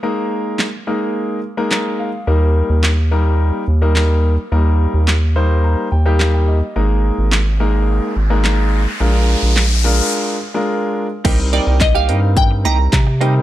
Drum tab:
CC |--------|--------|--------|--------|
HH |--------|--------|--------|--------|
CP |--x---x-|--x---x-|--x---x-|--x---x-|
SD |--o---o-|--o---o-|--o---o-|--o---o-|
BD |--------|--------|--------|--------|

CC |--------|x-------|
HH |--------|xxxxxxxx|
CP |--x-----|--x---x-|
SD |--o-----|--o---o-|
BD |--------|o-o-o-o-|